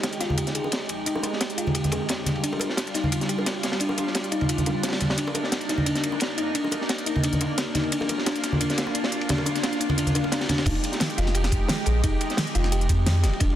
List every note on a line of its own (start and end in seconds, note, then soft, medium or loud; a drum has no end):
0.00 2.24 G#3 medium
0.00 2.24 D#4 medium
0.00 2.24 G4 medium
0.00 kick medium
0.00 snare loud
0.00 closed hi-hat medium
0.00 ride medium
0.13 closed hi-hat soft
0.13 ride soft
0.20 0.54 F1 loud
0.20 0.36 F4 loud
0.20 snare soft
0.20 closed hi-hat medium
0.20 ride medium
0.30 high conga medium
0.38 0.48 G4 medium
0.38 kick medium
0.38 closed hi-hat medium
0.38 ride medium
0.47 snare soft
0.47 closed hi-hat soft
0.55 0.63 F1 medium
0.55 0.70 G#4 medium
0.55 closed hi-hat medium
0.55 ride medium
0.64 high bongo medium
0.72 kick medium
0.72 snare loud
0.72 closed hi-hat medium
0.72 ride medium
0.89 1.05 A#1 medium
0.89 closed hi-hat medium
0.89 ride medium
1.06 1.15 F1 medium
1.06 1.16 D#4 medium
1.06 kick medium
1.06 closed hi-hat medium
1.06 ride medium
1.15 high bongo medium
1.23 closed hi-hat medium
1.23 ride medium
1.23 high bongo medium
1.33 snare soft
1.41 kick loud
1.41 snare loud
1.41 closed hi-hat medium
1.41 ride medium
1.50 closed hi-hat soft
1.58 1.91 F1 loud
1.58 1.73 F4 loud
1.58 closed hi-hat medium
1.58 ride medium
1.67 ride soft
1.67 high conga medium
1.75 1.85 G4 medium
1.75 kick medium
1.75 closed hi-hat medium
1.75 ride medium
1.84 closed hi-hat soft
1.84 high conga medium
1.92 2.28 F2 medium
1.92 2.08 G#4 medium
1.92 closed hi-hat medium
1.92 ride medium
1.92 high bongo medium
2.08 kick medium
2.08 snare loud
2.08 closed hi-hat medium
2.08 ride medium
2.26 2.35 D#1 medium
2.26 5.15 G3 medium
2.26 7.88 D4 medium
2.26 5.15 F4 medium
2.26 snare soft
2.26 closed hi-hat medium
2.26 ride medium
2.26 high conga medium
2.35 ride soft
2.44 2.53 D4 medium
2.44 kick loud
2.44 closed hi-hat medium
2.44 ride medium
2.52 ride soft
2.52 high bongo medium
2.60 closed hi-hat medium
2.60 ride medium
2.60 high bongo medium
2.69 snare medium
2.77 kick loud
2.77 snare loud
2.77 closed hi-hat medium
2.77 ride medium
2.87 closed hi-hat soft
2.87 ride soft
2.94 3.28 D#1 loud
2.94 3.11 D#4 loud
2.94 snare soft
2.94 closed hi-hat medium
2.94 ride medium
3.04 high conga medium
3.12 3.22 F4 medium
3.12 kick medium
3.12 closed hi-hat medium
3.12 ride medium
3.21 snare soft
3.21 closed hi-hat soft
3.29 3.38 D#1 medium
3.29 3.45 G4 medium
3.29 closed hi-hat medium
3.29 ride medium
3.38 high bongo medium
3.46 kick medium
3.46 snare loud
3.46 closed hi-hat medium
3.46 ride medium
3.63 3.79 G1 medium
3.63 snare medium
3.63 closed hi-hat medium
3.63 ride medium
3.72 snare medium
3.72 ride medium
3.80 3.89 D#1 medium
3.80 3.90 D4 medium
3.80 kick medium
3.80 closed hi-hat medium
3.80 ride medium
3.89 high bongo medium
3.98 closed hi-hat medium
3.98 ride medium
3.98 high bongo medium
4.07 snare soft
4.14 kick medium
4.14 snare loud
4.14 closed hi-hat medium
4.14 ride medium
4.24 closed hi-hat soft
4.32 4.51 D#1 loud
4.32 4.48 D#4 loud
4.32 closed hi-hat medium
4.32 ride medium
4.41 ride soft
4.41 high conga medium
4.49 4.59 F4 medium
4.49 kick medium
4.49 closed hi-hat medium
4.49 ride medium
4.58 closed hi-hat soft
4.58 high conga medium
4.66 5.02 A#1 loud
4.66 4.82 F4 medium
4.66 closed hi-hat medium
4.66 ride medium
4.66 high bongo medium
4.83 kick loud
4.83 snare medium
4.83 closed hi-hat medium
4.83 ride medium
4.88 snare medium
4.88 ride medium
4.93 snare loud
4.93 ride medium
5.00 5.16 G1 medium
5.00 snare soft
5.00 closed hi-hat medium
5.00 ride medium
5.00 high conga medium
5.10 snare loud
5.10 ride medium
5.18 5.26 C2 medium
5.18 10.63 A#3 medium
5.18 5.28 D4 medium
5.18 7.89 D#4 medium
5.18 kick loud
5.18 closed hi-hat medium
5.18 ride medium
5.27 ride soft
5.27 high bongo medium
5.35 closed hi-hat medium
5.35 ride medium
5.35 high bongo medium
5.44 snare medium
5.52 kick loud
5.52 snare loud
5.52 closed hi-hat medium
5.52 ride medium
5.61 closed hi-hat soft
5.61 ride soft
5.69 6.02 C2 loud
5.69 5.85 D#4 medium
5.69 snare medium
5.69 closed hi-hat medium
5.69 ride medium
5.78 high conga medium
5.86 5.96 D4 medium
5.86 kick loud
5.86 closed hi-hat medium
5.86 ride medium
5.95 snare medium
5.95 closed hi-hat soft
6.04 6.12 C2 medium
6.04 closed hi-hat medium
6.04 ride medium
6.12 high bongo medium
6.20 kick loud
6.20 snare loud
6.20 closed hi-hat medium
6.20 ride medium
6.38 6.53 F2 medium
6.38 6.53 D#4 loud
6.38 closed hi-hat medium
6.38 ride medium
6.55 6.63 C2 loud
6.55 6.65 D4 medium
6.55 kick loud
6.55 closed hi-hat medium
6.55 ride medium
6.64 high bongo medium
6.72 closed hi-hat medium
6.72 ride medium
6.72 high bongo medium
6.81 snare soft
6.89 kick loud
6.89 snare loud
6.89 closed hi-hat medium
6.89 ride medium
6.98 closed hi-hat soft
7.06 7.39 C2 loud
7.06 7.22 D#4 loud
7.06 closed hi-hat medium
7.06 ride medium
7.15 ride soft
7.15 high conga medium
7.23 7.33 D4 medium
7.23 kick loud
7.23 closed hi-hat medium
7.23 ride medium
7.33 closed hi-hat soft
7.33 high conga medium
7.41 7.77 G1 medium
7.41 closed hi-hat medium
7.41 ride medium
7.41 high bongo medium
7.58 kick loud
7.58 snare loud
7.58 closed hi-hat medium
7.58 ride medium
7.75 7.90 D#4 loud
7.75 snare medium
7.75 closed hi-hat medium
7.75 ride medium
7.75 high conga medium
7.83 ride soft
7.92 8.00 G1 loud
7.92 10.64 D4 medium
7.92 8.02 D4 medium
7.92 10.64 F4 medium
7.92 kick loud
7.92 closed hi-hat medium
7.92 ride medium
8.01 ride soft
8.01 high bongo medium
8.09 kick loud
8.09 closed hi-hat medium
8.09 ride medium
8.09 high bongo medium
8.18 snare soft
8.26 8.36 D4 medium
8.26 kick loud
8.26 snare loud
8.26 closed hi-hat medium
8.26 ride medium
8.35 closed hi-hat soft
8.35 ride soft
8.43 8.77 G1 loud
8.43 kick loud
8.43 snare soft
8.43 closed hi-hat medium
8.43 ride medium
8.53 high conga medium
8.61 8.70 D4 medium
8.61 kick loud
8.61 closed hi-hat medium
8.61 ride medium
8.70 snare medium
8.70 closed hi-hat soft
8.78 8.86 G1 medium
8.78 kick loud
8.78 snare loud
8.78 closed hi-hat medium
8.78 ride medium
8.87 high bongo medium
8.95 9.05 D4 medium
8.95 kick loud
8.95 closed hi-hat loud
8.95 ride medium
9.04 snare loud
9.04 ride medium
9.12 9.28 C2 medium
9.12 kick loud
9.12 closed hi-hat medium
9.21 ride medium
9.29 9.39 D4 medium
9.29 kick loud
9.29 snare loud
9.29 closed hi-hat loud
9.29 ride medium
9.29 high conga medium
9.38 kick loud
9.38 high bongo medium
9.46 9.56 D4 medium
9.46 kick loud
9.46 closed hi-hat medium
9.46 ride medium
9.46 high bongo medium
9.55 kick medium
9.55 snare soft
9.55 closed hi-hat soft
9.55 ride medium
9.63 9.73 D4 medium
9.63 kick loud
9.63 snare loud
9.63 closed hi-hat loud
9.63 ride medium
9.73 kick medium
9.73 closed hi-hat soft
9.80 9.97 G1 loud
9.80 9.90 D4 medium
9.80 kick loud
9.80 closed hi-hat medium
9.80 ride medium
9.89 kick loud
9.89 ride soft
9.89 high conga medium
9.98 10.08 D4 medium
9.98 kick loud
9.98 closed hi-hat medium
9.98 ride medium
10.07 kick medium
10.07 closed hi-hat soft
10.07 high conga loud
10.15 10.25 D4 medium
10.15 kick loud
10.15 closed hi-hat medium
10.15 ride medium
10.15 high bongo medium
10.24 kick medium
10.24 high bongo medium
10.32 10.42 D4 medium
10.32 kick loud
10.32 snare loud
10.32 closed hi-hat loud
10.32 ride medium
10.41 kick medium
10.41 snare loud
10.41 ride medium
10.49 10.59 D4 medium
10.49 kick loud
10.49 snare loud
10.49 closed hi-hat medium
10.49 ride medium
10.49 high conga medium
10.58 kick medium
10.58 snare loud
10.58 ride medium
10.66 10.75 F1 loud
10.66 13.21 G#3 medium
10.66 13.21 D#4 medium
10.66 10.76 D#4 medium
10.66 13.21 G4 medium
10.66 kick loud
10.66 closed hi-hat medium
10.66 crash loud
10.66 ride medium
10.75 ride soft
10.84 closed hi-hat medium
10.84 ride medium
10.92 snare medium
10.92 closed hi-hat soft
11.00 snare loud
11.00 closed hi-hat medium
11.00 ride medium
11.10 closed hi-hat soft
11.10 ride soft
11.18 11.51 F1 loud
11.18 11.33 F4 loud
11.18 snare soft
11.18 closed hi-hat medium
11.18 ride medium
11.27 snare soft
11.34 11.45 G4 medium
11.34 closed hi-hat medium
11.34 ride medium
11.43 snare medium
11.43 closed hi-hat soft
11.52 11.60 F1 medium
11.52 kick loud
11.52 closed hi-hat medium
11.52 ride medium
11.68 snare loud
11.68 closed hi-hat loud
11.68 ride medium
11.86 12.02 A#1 medium
11.86 12.02 G#4 medium
11.86 closed hi-hat medium
11.86 ride medium
12.04 12.12 F1 medium
12.04 12.13 D#4 medium
12.04 kick loud
12.04 closed hi-hat medium
12.04 ride medium
12.21 closed hi-hat medium
12.21 ride medium
12.30 snare soft
12.30 closed hi-hat soft
12.37 snare loud
12.37 closed hi-hat medium
12.37 ride medium
12.47 closed hi-hat soft
12.55 12.88 F1 loud
12.55 12.71 F4 loud
12.55 closed hi-hat medium
12.55 ride medium
12.64 snare soft
12.64 ride soft
12.72 12.82 G4 medium
12.72 closed hi-hat medium
12.72 ride medium
12.81 closed hi-hat soft
12.89 13.25 F2 medium
12.89 kick loud
12.89 closed hi-hat medium
12.89 ride medium
13.06 snare loud
13.06 closed hi-hat medium
13.06 ride medium
13.23 13.32 D#1 loud
13.23 13.56 G3 medium
13.23 13.56 D4 medium
13.23 13.56 F4 loud
13.23 13.39 G4 medium
13.23 snare soft
13.23 closed hi-hat medium
13.23 ride medium
13.33 ride soft
13.40 13.49 D#1 medium
13.40 13.50 D4 medium
13.40 kick loud
13.40 closed hi-hat medium
13.40 ride medium
13.50 ride soft